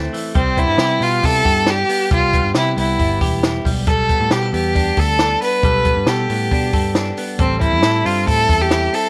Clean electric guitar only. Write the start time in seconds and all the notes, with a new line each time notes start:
Already playing: E3 A3 C4
0.13 E3
0.35 G3 G4
0.57 B3
0.80 G4
1.02 B3
1.24 E4
1.45 G4
1.67 D4
1.89 B3
2.11 G3 G4
2.33 B3
2.56 G4
2.78 B3
3.00 E4
3.21 G4
3.43 E4
3.65 G3
3.87 G3 A4
4.10 B3
4.31 G4
4.43 A4
4.54 B3
4.75 D4
4.98 A4
5.20 D4
5.42 B3
5.64 G3 A4
5.86 B3
6.07 A4
6.30 B3
6.53 D4
6.74 A4
6.96 D4
7.18 B3
7.39 G3 A4
7.61 C4
7.83 A4
8.04 C4
8.27 E4
8.49 A4
8.71 E4
8.93 C4